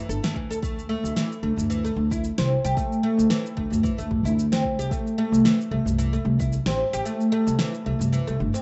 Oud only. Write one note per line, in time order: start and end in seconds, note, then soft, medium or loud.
0.09 0.22 A4 medium
0.23 0.35 A3 medium
0.36 0.50 E3 medium
0.51 0.58 A4 loud
0.62 0.88 A3 medium
0.89 1.15 A3 loud
1.16 1.30 E3 loud
1.43 1.57 A3 medium
1.70 1.83 E3 medium
1.85 1.96 A3 medium
2.11 2.23 E4 medium
2.38 2.50 C4 loud
2.65 2.76 G4 loud
2.77 3.02 A3 medium
3.03 3.29 A3 loud
3.30 3.44 E3 loud
3.57 3.71 A3 medium
3.83 3.97 E3 medium
3.98 4.10 A3 medium
4.25 4.37 E4 medium
4.52 4.64 C4 loud
4.79 4.90 G4 loud
4.91 5.17 A3 medium
5.18 5.44 A3 loud
5.45 5.59 E3 loud
5.71 5.86 A3 medium
5.98 6.12 E3 medium
6.13 6.25 A3 medium
6.40 6.51 E4 medium
6.67 6.78 C4 loud
6.93 7.04 G4 loud
7.05 7.31 A3 medium
7.32 7.58 A3 loud
7.59 7.73 E3 loud
7.86 8.00 A3 medium
8.13 8.26 E3 medium
8.27 8.39 A3 medium
8.54 8.62 C4 medium